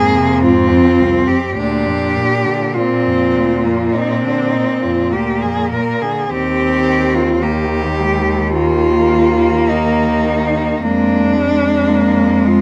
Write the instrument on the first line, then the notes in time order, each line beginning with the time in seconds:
cello
Already playing: F2 G#2 A#3 G#4
0.15 C3
0.42 G#2 C4 F4
0.71 F2
0.99 C2
1.27 F2 G4
1.57 D2 A#2 D4 G4
1.87 F2
2.16 A#2
2.45 D3
2.74 A#2 C4 F4
3.06 F2
3.36 D2
3.64 F2 A#3
3.93 A#2 C4 D#4
4.23 D3 D4
4.52 A#2 D#4
4.82 F2 F4
5.11 D2 A#3 G4
5.42 F2 G#4
5.72 A#2 A#4
6.02 D3 G#4
6.29 D#2 D#3 C4 G4
7.14 F4
7.42 D#3 A#3 G4
7.99 G#3
8.54 A#3 F4
9.69 D#3 D#4
10.82 F2 G#3 A#3 D4
11.36 G#3
11.89 A#3
12.46 G#3 F4